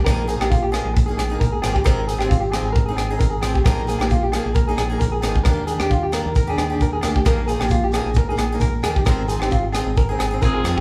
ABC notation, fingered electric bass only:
X:1
M:4/4
L:1/16
Q:"Swing 16ths" 1/4=133
K:Bbmix
V:1 name="Fingered electric bass" clef=bass
B,,,3 B,,,4 B,,,3 B,,,2 B,,,2 A,,,2 | A,,,3 A,,,4 A,,,3 A,,,2 A,,,2 =A,,,2 | B,,,3 B,,,4 B,,,3 B,,,2 B,,,2 A,,,2 | E,,3 E,,4 E,,3 E,,2 E,,2 D,,2 |
B,,,3 B,,,4 B,,,3 B,,,2 B,,,2 E,,2 | A,,,3 A,,,4 A,,,3 A,,,2 A,,,2 F,,2 |]